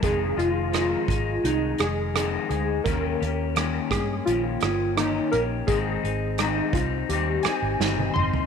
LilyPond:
<<
  \new Staff \with { instrumentName = "Synth keys" } { \time 4/4 \key f \minor \tempo 4 = 85 aes'8 f'4. ees'8 aes'4 aes'8 | bes'4 r8 aes'8 f'4 ees'8 bes'8 | aes'4 ees'8 f'8 g'8 aes''4 c'''8 | }
  \new Staff \with { instrumentName = "Clean electric guitar" } { \time 4/4 \key f \minor <f, c ees aes ees'>8 <ees aes ees'>8 <f, c ees aes ees'>8 <ees aes ees'>8 <c ees aes ees'>8 <ees aes ees'>8 <f, c ees aes ees'>8 <aes ees'>8 | <ees bes des' g'>8 <bes des' g'>8 <ees bes des' g'>8 <bes des'>8 <ees bes des' g'>8 <bes des' g'>8 <ees bes des' g'>8 <bes des' g'>8 | <aes, ees c' ees'>8 <c' ees'>8 <aes, ees g c' ees'>8 <g c' ees'>8 <ees g c' ees'>8 <g c' ees'>8 <ees g c' ees'>8 <g c' ees'>8 | }
  \new Staff \with { instrumentName = "Fingered electric bass" } { \clef bass \time 4/4 \key f \minor f,,8 f,,4 aes,,8 c,8 f,,4 d,8 | ees,8 ees,4 g,8 bes,,8 g,,4 bes,,8 | aes,,8 aes,,4 c,8 ees,8 r16 aes,,16 g,,8 g,,16 r16 | }
  \new DrumStaff \with { instrumentName = "Drums" } \drummode { \time 4/4 <hh bd>8 hh8 <hh ss>8 <hh bd>8 hh8 <hh ss>8 <hh ss>8 hh8 | <hh bd>8 hh8 <hh ss>8 <hh bd ss>8 hh8 <hh ss>8 <hh ss>8 hh8 | <hh bd>8 hh8 <hh ss>8 <hh bd>8 hh8 <hh ss>8 sn16 tommh16 toml16 tomfh16 | }
>>